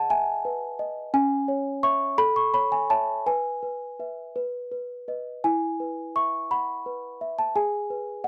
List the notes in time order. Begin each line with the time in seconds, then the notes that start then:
Already playing: G#4 B4 D#5 F#5 G#5 A5
0.10 E5 G#5
0.45 B4
0.79 D#5
1.14 C#4 G#5
1.48 C#5
1.83 C#5 E5 C#6
2.18 A4 B5
2.36 C#6
2.54 C#5 B5
2.72 G#5
2.90 C#5 E5 A5
3.26 B4 G#5
3.63 B4
3.99 B4 E5
4.36 B4
4.72 B4
5.08 B4 D#5
5.44 E4 G#5
5.80 B4
6.16 E5 C#6
6.51 F#5 B5
6.86 B4
7.21 E5
7.39 A5
7.56 G#4 G#5
7.90 B4
8.24 D#5 F#5